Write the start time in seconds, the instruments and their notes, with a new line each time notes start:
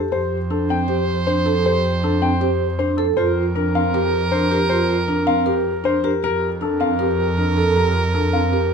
Already playing: vibraphone G4, grand piano A4
0.12 double bass section F2, vibraphone G4, grand piano C5, soprano saxophone C5
0.50 vibraphone D4, grand piano A4
0.69 vibraphone C4, grand piano G5
0.88 grand piano G4, vibraphone C5
1.27 vibraphone D4, grand piano C5
1.46 grand piano A4, vibraphone A4
1.65 vibraphone G4, grand piano C5
2.03 vibraphone D4, grand piano A4
2.22 vibraphone C4, grand piano G5
2.41 grand piano G4, vibraphone C5
2.79 vibraphone D4, grand piano C5
2.97 grand piano A4, vibraphone A4
3.17 double bass section F2, vibraphone F4, soprano saxophone A#4, grand piano C5
3.55 vibraphone D4, grand piano A#4
3.75 vibraphone C4, grand piano F5
3.94 grand piano G4, vibraphone A#4
4.32 vibraphone D4, grand piano C5
4.51 vibraphone G4, grand piano A#4
4.69 vibraphone F4, grand piano C5
5.08 vibraphone D4, grand piano A#4
5.27 vibraphone C4, grand piano F5
5.46 grand piano G4, vibraphone A#4
5.84 vibraphone D4, grand piano C5
6.04 vibraphone G4, grand piano A#4
6.23 double bass section F2, vibraphone G4, soprano saxophone A#4, grand piano A#4
6.61 vibraphone D4, grand piano A4
6.80 vibraphone C4, grand piano F5
6.99 grand piano G4, vibraphone A#4
7.38 vibraphone D4, grand piano A#4
7.57 vibraphone A4, grand piano A4
7.76 vibraphone G4, grand piano A#4
8.14 vibraphone D4, grand piano A4
8.33 vibraphone C4, grand piano F5
8.52 grand piano G4, vibraphone A#4